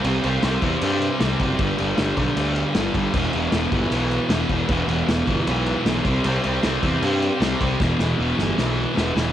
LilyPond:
<<
  \new Staff \with { instrumentName = "Distorted electric guitar" } { \clef bass \time 4/4 \key e \minor \tempo 4 = 154 <c g c'>8 <g c'>8 <c g c'>8 <g c'>4. <c g c'>8 <g c'>8 | <g, d g>8 <d g>8 <g, d g>8 <d g>4. <g, d g>8 <d g>8 | <e, b, e>8 <b, e>8 <e, b, e>8 <b, e>4. <e, b, e>8 <b, e>8 | <e, b, e>8 <b, e>8 <e, b, e>8 <b, e>4. <e, b, e>8 <c g c'>8 |
<c g c'>8 <g c'>8 <c g c'>8 <g c'>4. <c g c'>8 <g c'>8 | <e, b, e>8 <b, e>8 <e, b, e>8 <b, e>4. <e, b, e>8 <b, e>8 | }
  \new Staff \with { instrumentName = "Picked electric bass" } { \clef bass \time 4/4 \key e \minor c,8 c,8 c,8 e,8 g,4 c,8 fis,,8 | g,,8 g,,8 g,,8 b,,8 d,4 g,,8 g,,8 | e,,8 e,,8 e,,8 g,,8 b,,4 e,,8 e,,8 | e,,8 e,,8 e,,8 g,,8 b,,4 b,,8 c,8 |
c,8 c,8 c,8 e,8 g,4 c,8 c,8 | e,,8 e,,8 e,,8 g,,8 b,,4 e,,8 e,,8 | }
  \new DrumStaff \with { instrumentName = "Drums" } \drummode { \time 4/4 cymc8 cymc8 <cymc sn>8 <cymc bd>8 cymc8 cymc8 <cymc sn>8 <cymc bd>8 | <cymc bd>8 cymc8 <cymc sn>8 <cymc bd>8 cymc8 cymc8 <cymc sn>8 <cymc bd>8 | <cymc bd>8 cymc8 <cymc sn>8 <cymc bd>8 cymc8 cymc8 <cymc sn>8 <cymc bd>8 | <cymc bd>8 cymc8 <cymc sn>8 <cymc bd>8 cymc8 cymc8 <cymc sn>8 <cymc bd>8 |
cymc8 cymc8 <cymc sn>8 <cymc bd>8 cymc8 cymc8 <cymc sn>8 <cymc bd>8 | <bd sn>8 sn8 r8 sn8 sn4 sn8 sn8 | }
>>